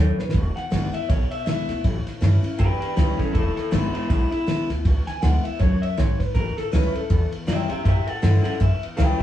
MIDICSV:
0, 0, Header, 1, 6, 480
1, 0, Start_track
1, 0, Tempo, 375704
1, 428, Time_signature, 4, 2, 24, 8
1, 11791, End_track
2, 0, Start_track
2, 0, Title_t, "Clean electric guitar"
2, 0, Program_c, 0, 27
2, 0, Note_on_c, 0, 69, 77
2, 0, Note_on_c, 0, 73, 88
2, 211, Note_off_c, 0, 69, 0
2, 245, Note_off_c, 0, 73, 0
2, 245, Note_on_c, 0, 71, 95
2, 431, Note_off_c, 0, 71, 0
2, 715, Note_on_c, 0, 78, 92
2, 1179, Note_off_c, 0, 78, 0
2, 1197, Note_on_c, 0, 76, 90
2, 1388, Note_off_c, 0, 76, 0
2, 1388, Note_on_c, 0, 73, 78
2, 1662, Note_off_c, 0, 73, 0
2, 1672, Note_on_c, 0, 76, 85
2, 1852, Note_off_c, 0, 76, 0
2, 1867, Note_on_c, 0, 76, 97
2, 2334, Note_off_c, 0, 76, 0
2, 3303, Note_on_c, 0, 67, 91
2, 3309, Note_on_c, 0, 71, 100
2, 3563, Note_off_c, 0, 67, 0
2, 3572, Note_off_c, 0, 71, 0
2, 3579, Note_on_c, 0, 67, 90
2, 3588, Note_on_c, 0, 71, 100
2, 3762, Note_off_c, 0, 67, 0
2, 3773, Note_off_c, 0, 71, 0
2, 3777, Note_on_c, 0, 67, 75
2, 3788, Note_on_c, 0, 71, 88
2, 4045, Note_off_c, 0, 67, 0
2, 4057, Note_on_c, 0, 61, 75
2, 4063, Note_off_c, 0, 71, 0
2, 4069, Note_on_c, 0, 69, 65
2, 4248, Note_off_c, 0, 69, 0
2, 4250, Note_off_c, 0, 61, 0
2, 4253, Note_on_c, 0, 64, 77
2, 4263, Note_on_c, 0, 69, 93
2, 4523, Note_off_c, 0, 64, 0
2, 4540, Note_off_c, 0, 69, 0
2, 4553, Note_on_c, 0, 69, 97
2, 4555, Note_on_c, 0, 64, 67
2, 4731, Note_off_c, 0, 64, 0
2, 4738, Note_on_c, 0, 56, 72
2, 4746, Note_off_c, 0, 69, 0
2, 4747, Note_on_c, 0, 64, 92
2, 5006, Note_off_c, 0, 56, 0
2, 5012, Note_off_c, 0, 64, 0
2, 5021, Note_on_c, 0, 56, 83
2, 5027, Note_on_c, 0, 64, 101
2, 5205, Note_off_c, 0, 56, 0
2, 5214, Note_off_c, 0, 64, 0
2, 5221, Note_on_c, 0, 56, 78
2, 5229, Note_on_c, 0, 64, 83
2, 5488, Note_off_c, 0, 56, 0
2, 5499, Note_off_c, 0, 64, 0
2, 5515, Note_on_c, 0, 64, 101
2, 5980, Note_off_c, 0, 64, 0
2, 6480, Note_on_c, 0, 80, 94
2, 6666, Note_off_c, 0, 80, 0
2, 6672, Note_on_c, 0, 78, 96
2, 6949, Note_off_c, 0, 78, 0
2, 6949, Note_on_c, 0, 76, 98
2, 7144, Note_off_c, 0, 76, 0
2, 7150, Note_on_c, 0, 73, 90
2, 7424, Note_off_c, 0, 73, 0
2, 7431, Note_on_c, 0, 76, 87
2, 7625, Note_off_c, 0, 76, 0
2, 7635, Note_on_c, 0, 73, 82
2, 7914, Note_off_c, 0, 73, 0
2, 7914, Note_on_c, 0, 71, 83
2, 8102, Note_off_c, 0, 71, 0
2, 8107, Note_on_c, 0, 70, 81
2, 8383, Note_off_c, 0, 70, 0
2, 8398, Note_on_c, 0, 69, 88
2, 8588, Note_off_c, 0, 69, 0
2, 8593, Note_on_c, 0, 71, 91
2, 8881, Note_off_c, 0, 71, 0
2, 8881, Note_on_c, 0, 69, 103
2, 9343, Note_off_c, 0, 69, 0
2, 9546, Note_on_c, 0, 67, 84
2, 9555, Note_on_c, 0, 76, 102
2, 9808, Note_off_c, 0, 67, 0
2, 9816, Note_off_c, 0, 76, 0
2, 9823, Note_on_c, 0, 67, 74
2, 9832, Note_on_c, 0, 76, 92
2, 10008, Note_off_c, 0, 67, 0
2, 10019, Note_off_c, 0, 76, 0
2, 10023, Note_on_c, 0, 67, 82
2, 10035, Note_on_c, 0, 76, 93
2, 10305, Note_off_c, 0, 67, 0
2, 10305, Note_on_c, 0, 69, 78
2, 10311, Note_off_c, 0, 76, 0
2, 10311, Note_on_c, 0, 78, 93
2, 10491, Note_off_c, 0, 69, 0
2, 10497, Note_off_c, 0, 78, 0
2, 10506, Note_on_c, 0, 69, 82
2, 10513, Note_on_c, 0, 78, 88
2, 10763, Note_off_c, 0, 69, 0
2, 10770, Note_off_c, 0, 78, 0
2, 10778, Note_on_c, 0, 69, 92
2, 10785, Note_on_c, 0, 78, 95
2, 10970, Note_off_c, 0, 69, 0
2, 10986, Note_off_c, 0, 78, 0
2, 10986, Note_on_c, 0, 76, 99
2, 11261, Note_off_c, 0, 76, 0
2, 11457, Note_on_c, 0, 71, 92
2, 11464, Note_on_c, 0, 79, 95
2, 11731, Note_on_c, 0, 67, 79
2, 11736, Note_off_c, 0, 79, 0
2, 11741, Note_on_c, 0, 76, 85
2, 11745, Note_off_c, 0, 71, 0
2, 11791, Note_off_c, 0, 67, 0
2, 11791, Note_off_c, 0, 76, 0
2, 11791, End_track
3, 0, Start_track
3, 0, Title_t, "Steel-string acoustic guitar"
3, 0, Program_c, 1, 25
3, 0, Note_on_c, 1, 42, 90
3, 409, Note_off_c, 1, 42, 0
3, 422, Note_on_c, 1, 40, 83
3, 899, Note_on_c, 1, 50, 81
3, 913, Note_on_c, 1, 56, 90
3, 918, Note_on_c, 1, 59, 93
3, 929, Note_on_c, 1, 64, 96
3, 1174, Note_off_c, 1, 50, 0
3, 1174, Note_off_c, 1, 64, 0
3, 1182, Note_off_c, 1, 56, 0
3, 1184, Note_off_c, 1, 59, 0
3, 1189, Note_on_c, 1, 64, 65
3, 1212, Note_on_c, 1, 59, 50
3, 1346, Note_off_c, 1, 40, 0
3, 1381, Note_off_c, 1, 64, 0
3, 1392, Note_off_c, 1, 59, 0
3, 1402, Note_on_c, 1, 47, 97
3, 1865, Note_on_c, 1, 50, 82
3, 1877, Note_on_c, 1, 56, 88
3, 1884, Note_on_c, 1, 59, 93
3, 1887, Note_on_c, 1, 64, 99
3, 2131, Note_off_c, 1, 64, 0
3, 2138, Note_off_c, 1, 50, 0
3, 2144, Note_off_c, 1, 56, 0
3, 2146, Note_on_c, 1, 64, 62
3, 2147, Note_off_c, 1, 59, 0
3, 2172, Note_on_c, 1, 59, 47
3, 2317, Note_off_c, 1, 47, 0
3, 2339, Note_off_c, 1, 64, 0
3, 2352, Note_off_c, 1, 59, 0
3, 2352, Note_on_c, 1, 45, 77
3, 2819, Note_on_c, 1, 52, 88
3, 2829, Note_on_c, 1, 55, 80
3, 2836, Note_on_c, 1, 61, 88
3, 2844, Note_on_c, 1, 64, 91
3, 3084, Note_off_c, 1, 64, 0
3, 3095, Note_off_c, 1, 52, 0
3, 3099, Note_on_c, 1, 64, 62
3, 3100, Note_off_c, 1, 55, 0
3, 3104, Note_off_c, 1, 61, 0
3, 3123, Note_on_c, 1, 61, 54
3, 3272, Note_off_c, 1, 45, 0
3, 3296, Note_off_c, 1, 64, 0
3, 3304, Note_on_c, 1, 40, 104
3, 3308, Note_off_c, 1, 61, 0
3, 3787, Note_on_c, 1, 52, 89
3, 3794, Note_on_c, 1, 55, 95
3, 3806, Note_on_c, 1, 61, 84
3, 3813, Note_on_c, 1, 64, 98
3, 4228, Note_off_c, 1, 40, 0
3, 4249, Note_off_c, 1, 52, 0
3, 4253, Note_off_c, 1, 55, 0
3, 4259, Note_off_c, 1, 61, 0
3, 4262, Note_off_c, 1, 64, 0
3, 4277, Note_on_c, 1, 40, 80
3, 4743, Note_on_c, 1, 50, 83
3, 4752, Note_on_c, 1, 56, 99
3, 4765, Note_on_c, 1, 59, 98
3, 4769, Note_on_c, 1, 64, 92
3, 5195, Note_off_c, 1, 40, 0
3, 5208, Note_off_c, 1, 50, 0
3, 5212, Note_off_c, 1, 56, 0
3, 5218, Note_off_c, 1, 59, 0
3, 5220, Note_off_c, 1, 64, 0
3, 5239, Note_on_c, 1, 47, 96
3, 5704, Note_on_c, 1, 50, 80
3, 5713, Note_on_c, 1, 56, 82
3, 5720, Note_on_c, 1, 59, 94
3, 5728, Note_on_c, 1, 64, 89
3, 5978, Note_off_c, 1, 50, 0
3, 5983, Note_off_c, 1, 56, 0
3, 5983, Note_off_c, 1, 64, 0
3, 5986, Note_off_c, 1, 59, 0
3, 5998, Note_on_c, 1, 64, 55
3, 6021, Note_on_c, 1, 59, 47
3, 6156, Note_off_c, 1, 47, 0
3, 6186, Note_off_c, 1, 64, 0
3, 6196, Note_on_c, 1, 40, 79
3, 6198, Note_off_c, 1, 59, 0
3, 6670, Note_on_c, 1, 50, 89
3, 6678, Note_on_c, 1, 56, 89
3, 6684, Note_on_c, 1, 59, 95
3, 6692, Note_on_c, 1, 64, 91
3, 6930, Note_off_c, 1, 64, 0
3, 6941, Note_off_c, 1, 50, 0
3, 6945, Note_off_c, 1, 56, 0
3, 6946, Note_on_c, 1, 64, 58
3, 6948, Note_off_c, 1, 59, 0
3, 6970, Note_on_c, 1, 59, 45
3, 7114, Note_off_c, 1, 40, 0
3, 7140, Note_off_c, 1, 64, 0
3, 7148, Note_on_c, 1, 42, 101
3, 7152, Note_off_c, 1, 59, 0
3, 7610, Note_off_c, 1, 42, 0
3, 7634, Note_on_c, 1, 44, 90
3, 8093, Note_off_c, 1, 44, 0
3, 8109, Note_on_c, 1, 45, 77
3, 8581, Note_on_c, 1, 52, 83
3, 8592, Note_on_c, 1, 55, 93
3, 8599, Note_on_c, 1, 61, 91
3, 8605, Note_on_c, 1, 64, 94
3, 8847, Note_off_c, 1, 64, 0
3, 8857, Note_off_c, 1, 52, 0
3, 8862, Note_off_c, 1, 55, 0
3, 8862, Note_on_c, 1, 64, 55
3, 8866, Note_off_c, 1, 61, 0
3, 8885, Note_on_c, 1, 61, 45
3, 9031, Note_off_c, 1, 45, 0
3, 9059, Note_off_c, 1, 64, 0
3, 9069, Note_on_c, 1, 40, 99
3, 9070, Note_off_c, 1, 61, 0
3, 9540, Note_on_c, 1, 52, 88
3, 9549, Note_on_c, 1, 55, 91
3, 9557, Note_on_c, 1, 61, 84
3, 9566, Note_on_c, 1, 64, 106
3, 9811, Note_off_c, 1, 64, 0
3, 9816, Note_off_c, 1, 52, 0
3, 9821, Note_off_c, 1, 55, 0
3, 9825, Note_off_c, 1, 61, 0
3, 9827, Note_on_c, 1, 64, 55
3, 9849, Note_on_c, 1, 61, 49
3, 9991, Note_off_c, 1, 40, 0
3, 10020, Note_off_c, 1, 64, 0
3, 10032, Note_off_c, 1, 61, 0
3, 10039, Note_on_c, 1, 45, 89
3, 10502, Note_on_c, 1, 52, 90
3, 10509, Note_on_c, 1, 55, 92
3, 10521, Note_on_c, 1, 61, 90
3, 10526, Note_on_c, 1, 64, 92
3, 10766, Note_off_c, 1, 64, 0
3, 10777, Note_off_c, 1, 52, 0
3, 10781, Note_off_c, 1, 55, 0
3, 10782, Note_on_c, 1, 64, 63
3, 10786, Note_off_c, 1, 61, 0
3, 10803, Note_on_c, 1, 61, 51
3, 10955, Note_off_c, 1, 45, 0
3, 10978, Note_off_c, 1, 64, 0
3, 10987, Note_on_c, 1, 40, 96
3, 10989, Note_off_c, 1, 61, 0
3, 11460, Note_on_c, 1, 52, 97
3, 11469, Note_on_c, 1, 55, 90
3, 11475, Note_on_c, 1, 61, 88
3, 11482, Note_on_c, 1, 64, 105
3, 11733, Note_off_c, 1, 64, 0
3, 11736, Note_off_c, 1, 52, 0
3, 11740, Note_off_c, 1, 55, 0
3, 11743, Note_off_c, 1, 61, 0
3, 11748, Note_on_c, 1, 64, 62
3, 11791, Note_off_c, 1, 40, 0
3, 11791, Note_off_c, 1, 64, 0
3, 11791, End_track
4, 0, Start_track
4, 0, Title_t, "Upright bass"
4, 0, Program_c, 2, 32
4, 0, Note_on_c, 2, 39, 91
4, 159, Note_off_c, 2, 39, 0
4, 440, Note_on_c, 2, 28, 103
4, 641, Note_off_c, 2, 28, 0
4, 913, Note_on_c, 2, 32, 85
4, 1117, Note_off_c, 2, 32, 0
4, 1403, Note_on_c, 2, 35, 93
4, 1603, Note_off_c, 2, 35, 0
4, 1873, Note_on_c, 2, 37, 84
4, 2077, Note_off_c, 2, 37, 0
4, 2155, Note_on_c, 2, 38, 101
4, 2298, Note_off_c, 2, 38, 0
4, 2359, Note_on_c, 2, 33, 95
4, 2561, Note_off_c, 2, 33, 0
4, 2831, Note_on_c, 2, 43, 90
4, 3035, Note_off_c, 2, 43, 0
4, 3318, Note_on_c, 2, 42, 99
4, 3520, Note_off_c, 2, 42, 0
4, 3791, Note_on_c, 2, 37, 97
4, 3995, Note_off_c, 2, 37, 0
4, 4283, Note_on_c, 2, 28, 98
4, 4484, Note_off_c, 2, 28, 0
4, 4749, Note_on_c, 2, 32, 94
4, 4954, Note_off_c, 2, 32, 0
4, 5239, Note_on_c, 2, 35, 99
4, 5441, Note_off_c, 2, 35, 0
4, 5715, Note_on_c, 2, 37, 89
4, 5919, Note_off_c, 2, 37, 0
4, 5998, Note_on_c, 2, 38, 92
4, 6140, Note_off_c, 2, 38, 0
4, 6200, Note_on_c, 2, 37, 96
4, 6402, Note_off_c, 2, 37, 0
4, 6679, Note_on_c, 2, 38, 85
4, 6881, Note_off_c, 2, 38, 0
4, 7159, Note_on_c, 2, 37, 94
4, 7362, Note_off_c, 2, 37, 0
4, 7636, Note_on_c, 2, 35, 89
4, 7839, Note_off_c, 2, 35, 0
4, 8121, Note_on_c, 2, 33, 91
4, 8322, Note_off_c, 2, 33, 0
4, 8599, Note_on_c, 2, 37, 92
4, 8801, Note_off_c, 2, 37, 0
4, 9079, Note_on_c, 2, 40, 91
4, 9281, Note_off_c, 2, 40, 0
4, 9548, Note_on_c, 2, 42, 90
4, 9754, Note_off_c, 2, 42, 0
4, 9827, Note_on_c, 2, 43, 97
4, 9974, Note_off_c, 2, 43, 0
4, 10038, Note_on_c, 2, 42, 100
4, 10240, Note_off_c, 2, 42, 0
4, 10515, Note_on_c, 2, 43, 91
4, 10718, Note_off_c, 2, 43, 0
4, 10998, Note_on_c, 2, 42, 89
4, 11200, Note_off_c, 2, 42, 0
4, 11478, Note_on_c, 2, 37, 84
4, 11680, Note_off_c, 2, 37, 0
4, 11791, End_track
5, 0, Start_track
5, 0, Title_t, "Muted upright bass strokes"
5, 234, Note_on_c, 9, 29, 71
5, 362, Note_off_c, 9, 29, 0
5, 717, Note_on_c, 9, 29, 71
5, 845, Note_off_c, 9, 29, 0
5, 1193, Note_on_c, 9, 29, 73
5, 1321, Note_off_c, 9, 29, 0
5, 1676, Note_on_c, 9, 29, 67
5, 1804, Note_off_c, 9, 29, 0
5, 2636, Note_on_c, 9, 29, 69
5, 2764, Note_off_c, 9, 29, 0
5, 3114, Note_on_c, 9, 29, 74
5, 3242, Note_off_c, 9, 29, 0
5, 3591, Note_on_c, 9, 29, 75
5, 3719, Note_off_c, 9, 29, 0
5, 4082, Note_on_c, 9, 29, 77
5, 4210, Note_off_c, 9, 29, 0
5, 4552, Note_on_c, 9, 29, 76
5, 4680, Note_off_c, 9, 29, 0
5, 5036, Note_on_c, 9, 29, 71
5, 5164, Note_off_c, 9, 29, 0
5, 6483, Note_on_c, 9, 29, 71
5, 6611, Note_off_c, 9, 29, 0
5, 7435, Note_on_c, 9, 29, 72
5, 7563, Note_off_c, 9, 29, 0
5, 8398, Note_on_c, 9, 29, 72
5, 8526, Note_off_c, 9, 29, 0
5, 8880, Note_on_c, 9, 29, 73
5, 9007, Note_off_c, 9, 29, 0
5, 9355, Note_on_c, 9, 29, 70
5, 9483, Note_off_c, 9, 29, 0
5, 10315, Note_on_c, 9, 29, 77
5, 10443, Note_off_c, 9, 29, 0
5, 10798, Note_on_c, 9, 29, 73
5, 10926, Note_off_c, 9, 29, 0
5, 11277, Note_on_c, 9, 29, 68
5, 11405, Note_off_c, 9, 29, 0
5, 11791, End_track
6, 0, Start_track
6, 0, Title_t, "Drums"
6, 241, Note_on_c, 9, 38, 65
6, 369, Note_off_c, 9, 38, 0
6, 374, Note_on_c, 9, 38, 90
6, 439, Note_off_c, 9, 38, 0
6, 439, Note_on_c, 9, 38, 34
6, 439, Note_on_c, 9, 51, 88
6, 440, Note_on_c, 9, 36, 116
6, 566, Note_off_c, 9, 38, 0
6, 566, Note_off_c, 9, 51, 0
6, 568, Note_off_c, 9, 36, 0
6, 724, Note_on_c, 9, 38, 35
6, 724, Note_on_c, 9, 51, 61
6, 852, Note_off_c, 9, 38, 0
6, 852, Note_off_c, 9, 51, 0
6, 919, Note_on_c, 9, 38, 117
6, 919, Note_on_c, 9, 51, 91
6, 1047, Note_off_c, 9, 38, 0
6, 1047, Note_off_c, 9, 51, 0
6, 1203, Note_on_c, 9, 51, 69
6, 1331, Note_off_c, 9, 51, 0
6, 1400, Note_on_c, 9, 38, 32
6, 1400, Note_on_c, 9, 51, 89
6, 1401, Note_on_c, 9, 36, 118
6, 1528, Note_off_c, 9, 38, 0
6, 1528, Note_off_c, 9, 51, 0
6, 1529, Note_off_c, 9, 36, 0
6, 1678, Note_on_c, 9, 51, 75
6, 1806, Note_off_c, 9, 51, 0
6, 1878, Note_on_c, 9, 38, 107
6, 1878, Note_on_c, 9, 51, 84
6, 2006, Note_off_c, 9, 38, 0
6, 2006, Note_off_c, 9, 51, 0
6, 2157, Note_on_c, 9, 38, 34
6, 2157, Note_on_c, 9, 51, 69
6, 2285, Note_off_c, 9, 38, 0
6, 2285, Note_off_c, 9, 51, 0
6, 2354, Note_on_c, 9, 38, 32
6, 2354, Note_on_c, 9, 51, 88
6, 2359, Note_on_c, 9, 36, 111
6, 2482, Note_off_c, 9, 38, 0
6, 2482, Note_off_c, 9, 51, 0
6, 2486, Note_off_c, 9, 36, 0
6, 2641, Note_on_c, 9, 38, 34
6, 2641, Note_on_c, 9, 51, 63
6, 2768, Note_off_c, 9, 38, 0
6, 2768, Note_off_c, 9, 51, 0
6, 2838, Note_on_c, 9, 38, 111
6, 2838, Note_on_c, 9, 51, 94
6, 2966, Note_off_c, 9, 38, 0
6, 2966, Note_off_c, 9, 51, 0
6, 3116, Note_on_c, 9, 51, 69
6, 3244, Note_off_c, 9, 51, 0
6, 3316, Note_on_c, 9, 38, 32
6, 3316, Note_on_c, 9, 51, 85
6, 3319, Note_on_c, 9, 36, 114
6, 3444, Note_off_c, 9, 38, 0
6, 3444, Note_off_c, 9, 51, 0
6, 3446, Note_off_c, 9, 36, 0
6, 3601, Note_on_c, 9, 51, 64
6, 3729, Note_off_c, 9, 51, 0
6, 3796, Note_on_c, 9, 38, 108
6, 3796, Note_on_c, 9, 51, 75
6, 3924, Note_off_c, 9, 38, 0
6, 3924, Note_off_c, 9, 51, 0
6, 4080, Note_on_c, 9, 36, 79
6, 4081, Note_on_c, 9, 38, 33
6, 4081, Note_on_c, 9, 51, 61
6, 4208, Note_off_c, 9, 36, 0
6, 4209, Note_off_c, 9, 38, 0
6, 4209, Note_off_c, 9, 51, 0
6, 4279, Note_on_c, 9, 36, 112
6, 4280, Note_on_c, 9, 51, 79
6, 4407, Note_off_c, 9, 36, 0
6, 4407, Note_off_c, 9, 51, 0
6, 4562, Note_on_c, 9, 38, 34
6, 4562, Note_on_c, 9, 51, 60
6, 4690, Note_off_c, 9, 38, 0
6, 4690, Note_off_c, 9, 51, 0
6, 4757, Note_on_c, 9, 38, 121
6, 4757, Note_on_c, 9, 51, 91
6, 4884, Note_off_c, 9, 38, 0
6, 4884, Note_off_c, 9, 51, 0
6, 5043, Note_on_c, 9, 51, 66
6, 5170, Note_off_c, 9, 51, 0
6, 5238, Note_on_c, 9, 38, 33
6, 5238, Note_on_c, 9, 51, 87
6, 5239, Note_on_c, 9, 36, 119
6, 5366, Note_off_c, 9, 36, 0
6, 5366, Note_off_c, 9, 38, 0
6, 5366, Note_off_c, 9, 51, 0
6, 5521, Note_on_c, 9, 51, 68
6, 5648, Note_off_c, 9, 51, 0
6, 5721, Note_on_c, 9, 38, 113
6, 5721, Note_on_c, 9, 51, 84
6, 5849, Note_off_c, 9, 38, 0
6, 5849, Note_off_c, 9, 51, 0
6, 6004, Note_on_c, 9, 38, 35
6, 6004, Note_on_c, 9, 51, 72
6, 6132, Note_off_c, 9, 38, 0
6, 6132, Note_off_c, 9, 51, 0
6, 6200, Note_on_c, 9, 36, 109
6, 6200, Note_on_c, 9, 38, 34
6, 6200, Note_on_c, 9, 51, 90
6, 6327, Note_off_c, 9, 38, 0
6, 6327, Note_off_c, 9, 51, 0
6, 6328, Note_off_c, 9, 36, 0
6, 6481, Note_on_c, 9, 38, 34
6, 6481, Note_on_c, 9, 51, 62
6, 6609, Note_off_c, 9, 38, 0
6, 6609, Note_off_c, 9, 51, 0
6, 6679, Note_on_c, 9, 38, 119
6, 6679, Note_on_c, 9, 51, 93
6, 6806, Note_off_c, 9, 38, 0
6, 6806, Note_off_c, 9, 51, 0
6, 6963, Note_on_c, 9, 51, 64
6, 7091, Note_off_c, 9, 51, 0
6, 7161, Note_on_c, 9, 36, 110
6, 7164, Note_on_c, 9, 38, 34
6, 7164, Note_on_c, 9, 51, 76
6, 7289, Note_off_c, 9, 36, 0
6, 7292, Note_off_c, 9, 38, 0
6, 7292, Note_off_c, 9, 51, 0
6, 7447, Note_on_c, 9, 51, 70
6, 7575, Note_off_c, 9, 51, 0
6, 7642, Note_on_c, 9, 38, 102
6, 7642, Note_on_c, 9, 51, 73
6, 7770, Note_off_c, 9, 38, 0
6, 7770, Note_off_c, 9, 51, 0
6, 7921, Note_on_c, 9, 36, 83
6, 7923, Note_on_c, 9, 38, 34
6, 7923, Note_on_c, 9, 51, 64
6, 8049, Note_off_c, 9, 36, 0
6, 8051, Note_off_c, 9, 38, 0
6, 8051, Note_off_c, 9, 51, 0
6, 8120, Note_on_c, 9, 36, 104
6, 8122, Note_on_c, 9, 51, 79
6, 8247, Note_off_c, 9, 36, 0
6, 8250, Note_off_c, 9, 51, 0
6, 8405, Note_on_c, 9, 38, 33
6, 8405, Note_on_c, 9, 51, 63
6, 8533, Note_off_c, 9, 38, 0
6, 8533, Note_off_c, 9, 51, 0
6, 8600, Note_on_c, 9, 38, 121
6, 8600, Note_on_c, 9, 51, 89
6, 8727, Note_off_c, 9, 38, 0
6, 8727, Note_off_c, 9, 51, 0
6, 8884, Note_on_c, 9, 51, 60
6, 9012, Note_off_c, 9, 51, 0
6, 9077, Note_on_c, 9, 36, 113
6, 9079, Note_on_c, 9, 51, 80
6, 9205, Note_off_c, 9, 36, 0
6, 9207, Note_off_c, 9, 51, 0
6, 9357, Note_on_c, 9, 51, 69
6, 9484, Note_off_c, 9, 51, 0
6, 9557, Note_on_c, 9, 38, 100
6, 9557, Note_on_c, 9, 51, 84
6, 9685, Note_off_c, 9, 38, 0
6, 9685, Note_off_c, 9, 51, 0
6, 9832, Note_on_c, 9, 51, 69
6, 9959, Note_off_c, 9, 51, 0
6, 10032, Note_on_c, 9, 38, 33
6, 10032, Note_on_c, 9, 51, 87
6, 10035, Note_on_c, 9, 36, 109
6, 10160, Note_off_c, 9, 38, 0
6, 10160, Note_off_c, 9, 51, 0
6, 10163, Note_off_c, 9, 36, 0
6, 10315, Note_on_c, 9, 51, 71
6, 10443, Note_off_c, 9, 51, 0
6, 10513, Note_on_c, 9, 38, 127
6, 10513, Note_on_c, 9, 51, 94
6, 10641, Note_off_c, 9, 38, 0
6, 10641, Note_off_c, 9, 51, 0
6, 10797, Note_on_c, 9, 51, 72
6, 10925, Note_off_c, 9, 51, 0
6, 10997, Note_on_c, 9, 36, 108
6, 10998, Note_on_c, 9, 51, 90
6, 11125, Note_off_c, 9, 36, 0
6, 11126, Note_off_c, 9, 51, 0
6, 11282, Note_on_c, 9, 51, 68
6, 11410, Note_off_c, 9, 51, 0
6, 11478, Note_on_c, 9, 38, 107
6, 11478, Note_on_c, 9, 51, 75
6, 11605, Note_off_c, 9, 38, 0
6, 11605, Note_off_c, 9, 51, 0
6, 11791, End_track
0, 0, End_of_file